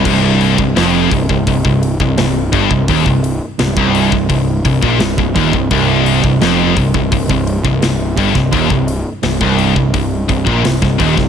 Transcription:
<<
  \new Staff \with { instrumentName = "Distorted electric guitar" } { \clef bass \time 4/4 \key c \minor \tempo 4 = 85 c,8. c,16 f,8 c,16 c,16 c,16 c,8 c,16 c,8 g,16 c,16 | ees,16 c,8 r16 c,16 c,8 c,16 c,8 c,16 bes,16 c,16 c,16 ees,16 c,16 | c,8. c,16 f,8 c,16 c,16 c,16 c,8 c,16 c,8 g,16 c,16 | ees,16 c,8 r16 c,16 c,8 c,16 c,8 c,16 bes,16 c,16 c,16 ees,16 c,16 | }
  \new Staff \with { instrumentName = "Distorted electric guitar" } { \clef bass \time 4/4 \key c \minor c,8. c,16 f,8 c,16 c,16 c,16 c,8 c,16 c,8 g,16 c,16 | ees,16 c,8 r16 c,16 c,8 c,16 c,8 c,16 bes,16 c,16 c,16 ees,16 c,16 | c,8. c,16 f,8 c,16 c,16 c,16 c,8 c,16 c,8 g,16 c,16 | ees,16 c,8 r16 c,16 c,8 c,16 c,8 c,16 bes,16 c,16 c,16 ees,16 c,16 | }
  \new Staff \with { instrumentName = "Picked electric bass" } { \clef bass \time 4/4 \key c \minor c,,8. c,,16 f,,8 c,,16 c,,16 c,,16 c,,8 c,,16 c,,8 g,,16 c,,16 | ees,,16 c,,8 r16 c,,16 c,,8 c,,16 c,,8 c,,16 bes,,16 c,,16 c,,16 ees,,16 c,,16 | c,,8. c,,16 f,,8 c,,16 c,,16 c,,16 c,,8 c,,16 c,,8 g,,16 c,,16 | ees,,16 c,,8 r16 c,,16 c,,8 c,,16 c,,8 c,,16 bes,,16 c,,16 c,,16 ees,,16 c,,16 | }
  \new DrumStaff \with { instrumentName = "Drums" } \drummode { \time 4/4 <cymc bd>8 hho16 bd16 <hho sn>8 <hho bd>16 bd16 <hho bd>16 bd16 hho16 bd16 <hho sn>8 <hho bd>16 bd16 | <hho bd>16 bd16 hho8 <hho sn>16 bd16 hho16 bd16 <hho bd>8 <hho bd>16 bd16 <hho sn>16 bd16 <hho bd>16 bd16 | <hho bd>8 hho16 bd16 <hho sn>8 <hho bd>16 bd16 <hho bd>16 bd16 hho16 bd16 <hho sn>8 <hho bd>16 <bd sn>16 | <hho bd>16 bd16 hho8 <hho sn>16 bd16 hho16 bd16 <hho bd>8 <hho bd>16 bd16 <hho sn>16 <bd sn>16 <hho bd>16 <bd sn>16 | }
>>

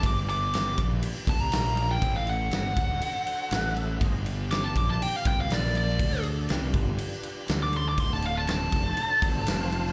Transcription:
<<
  \new Staff \with { instrumentName = "Lead electric guitar" } { \time 4/4 \key g \major \tempo 4 = 121 d'''16 r16 d'''8 d'''8 r4 a''16 bes''4 g''16~ | g''16 f''16 fis''2. r8 | r4 d'''16 a''16 d'''16 a''16 g''16 f''16 g''16 f''16 d''8 d''8~ | d''8 r2 r8. d'''16 c'''16 d'''16 |
c'''16 a''16 f''16 a''16 a''2. | }
  \new Staff \with { instrumentName = "Tonewheel organ" } { \time 4/4 \key g \major <f' g' b' d''>2. <bes f' bes' f''>4 | <a e' a' e''>4 <d' fis' a' c''>2 <a e' a' e''>4 | \tuplet 3/2 { <fis' gis' c'' ees''>8 <f' g' b' d''>4~ } <f' g' b' d''>2 <bes f' bes' f''>4 | <a d' a' d''>4 <d' f' g' b'>2 <a d' a' d''>4 |
<d' fis' a' c''>2. <c' f' c'' f''>4 | }
  \new Staff \with { instrumentName = "Fingered electric bass" } { \clef bass \time 4/4 \key g \major g,,4. bes,,8 r8 c,8 bes,,4 | a,,4 g,,8 d,,8 r4 a,,4 | g,,4. bes,,8 r8 c,8 bes,,4 | d,4 c,8 g,,8 r4 d,4 |
d,,4. f,,8 r8 g,,8 f,,4 | }
  \new DrumStaff \with { instrumentName = "Drums" } \drummode { \time 4/4 <cymc bd>8 cymc8 <cymc sn>8 <cymc bd>8 cymc8 <cymc bd>8 <cymc sn>8 cymc8 | <cymc bd>8 cymc8 <cymc sn>8 <cymc bd>8 cymc8 cymc8 <cymc sn>8 cymc8 | <cymc bd>8 cymc8 <cymc sn>8 <cymc bd>8 cymc8 <cymc bd>8 <cymc sn>8 cymc16 sn16 | <cymc bd>8 cymc8 <cymc sn>8 <cymc bd>8 cymc8 cymc8 <cymc sn>8 cymc8 |
<cymc bd>8 cymc8 <cymc sn>8 <cymc bd>8 cymc8 <cymc bd>8 <cymc sn>8 cymc16 sn16 | }
>>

